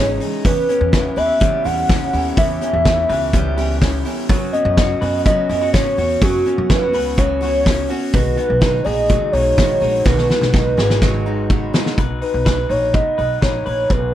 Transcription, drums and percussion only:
0.21 hi-hat pedal medium
0.21 open hi-hat medium
0.45 kick loud
0.45 hi-hat pedal medium
0.45 open hi-hat medium
0.69 hi-hat pedal medium
0.69 open hi-hat medium
0.93 kick loud
0.93 snare medium
0.93 hi-hat pedal medium
0.93 open hi-hat medium
1.17 hi-hat pedal medium
1.17 open hi-hat medium
1.41 kick loud
1.41 hi-hat pedal medium
1.41 open hi-hat medium
1.65 hi-hat pedal medium
1.65 open hi-hat medium
1.89 kick loud
1.89 snare medium
1.89 hi-hat pedal medium
1.89 open hi-hat medium
2.13 hi-hat pedal medium
2.13 open hi-hat medium
2.37 kick loud
2.37 hi-hat pedal medium
2.37 open hi-hat medium
2.61 hi-hat pedal medium
2.61 open hi-hat medium
2.85 kick loud
2.85 snare loud
2.85 hi-hat pedal medium
2.85 open hi-hat medium
3.09 hi-hat pedal medium
3.09 open hi-hat medium
3.33 kick loud
3.33 hi-hat pedal medium
3.33 open hi-hat medium
3.57 hi-hat pedal medium
3.57 open hi-hat medium
3.81 kick loud
3.81 snare medium
3.81 hi-hat pedal medium
3.81 open hi-hat medium
4.05 hi-hat pedal medium
4.05 open hi-hat medium
4.29 kick loud
4.29 hi-hat pedal medium
4.29 open hi-hat medium
4.53 hi-hat pedal medium
4.53 open hi-hat medium
4.77 kick loud
4.77 snare loud
4.77 hi-hat pedal medium
4.77 open hi-hat medium
5.02 hi-hat pedal medium
5.02 open hi-hat medium
5.25 kick loud
5.25 hi-hat pedal medium
5.25 open hi-hat medium
5.50 hi-hat pedal medium
5.50 open hi-hat medium
5.74 kick loud
5.74 snare loud
5.74 hi-hat pedal medium
5.74 open hi-hat medium
5.98 hi-hat pedal medium
5.98 open hi-hat medium
6.21 kick loud
6.21 hi-hat pedal medium
6.21 open hi-hat medium
6.46 hi-hat pedal medium
6.46 open hi-hat medium
6.70 kick loud
6.70 snare loud
6.70 hi-hat pedal medium
6.70 open hi-hat medium
6.94 hi-hat pedal medium
6.94 open hi-hat medium
7.17 kick loud
7.17 hi-hat pedal medium
7.17 open hi-hat medium
7.42 hi-hat pedal medium
7.42 open hi-hat medium
7.66 kick loud
7.66 snare loud
7.66 hi-hat pedal medium
7.66 open hi-hat medium
7.90 hi-hat pedal medium
7.90 open hi-hat medium
8.14 kick loud
8.14 hi-hat pedal medium
8.14 open hi-hat medium
8.37 hi-hat pedal medium
8.37 open hi-hat medium
8.61 kick loud
8.61 snare loud
8.61 hi-hat pedal medium
8.61 open hi-hat medium
8.85 hi-hat pedal medium
8.85 open hi-hat medium
9.09 kick loud
9.09 hi-hat pedal medium
9.09 open hi-hat medium
9.34 hi-hat pedal medium
9.34 open hi-hat medium
9.58 kick loud
9.58 snare medium
9.58 hi-hat pedal medium
9.58 open hi-hat medium
9.82 hi-hat pedal medium
9.82 open hi-hat medium
10.06 kick loud
10.06 snare medium
10.18 snare medium
10.30 snare medium
10.42 snare medium
10.54 kick loud
10.54 snare medium
10.78 snare medium
10.90 snare medium
11.02 kick loud
11.02 snare medium
11.50 kick loud
11.74 snare loud
11.86 snare medium
11.98 kick loud
11.98 closed hi-hat medium
12.22 open hi-hat medium
12.46 kick medium
12.46 snare medium
12.46 closed hi-hat medium
12.70 open hi-hat medium
12.94 kick loud
12.94 closed hi-hat medium
13.18 open hi-hat soft
13.42 kick medium
13.42 snare medium
13.42 closed hi-hat medium
13.66 open hi-hat soft
13.90 kick loud
13.90 closed hi-hat medium

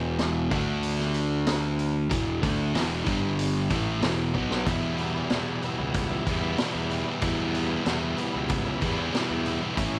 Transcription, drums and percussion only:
0.19 snare loud
0.19 open hi-hat medium
0.51 kick loud
0.51 open hi-hat soft
0.83 open hi-hat medium
0.99 snare soft
1.14 open hi-hat medium
1.47 snare loud
1.47 open hi-hat medium
1.79 open hi-hat medium
2.11 kick loud
2.11 open hi-hat medium
2.43 kick loud
2.43 open hi-hat medium
2.75 snare loud
2.75 open hi-hat medium
3.06 kick medium
3.06 open hi-hat medium
3.39 open hi-hat medium
3.70 kick loud
3.70 open hi-hat medium
4.02 snare loud
4.02 open hi-hat medium
4.35 kick medium
4.51 snare medium
4.66 kick loud
4.66 open hi-hat medium
4.98 open hi-hat soft
5.30 snare medium
5.30 open hi-hat medium
5.62 open hi-hat soft
5.94 kick loud
5.94 open hi-hat medium
6.27 kick medium
6.27 open hi-hat medium
6.58 snare loud
6.58 open hi-hat medium
6.91 open hi-hat soft
7.21 kick loud
7.21 open hi-hat medium
7.55 open hi-hat medium
7.86 snare medium
7.86 open hi-hat medium
8.18 open hi-hat soft
8.49 kick loud
8.49 open hi-hat medium
8.82 kick medium
8.82 open hi-hat medium
9.14 snare loud
9.14 open hi-hat medium
9.46 open hi-hat soft
9.77 kick loud
9.77 open hi-hat medium

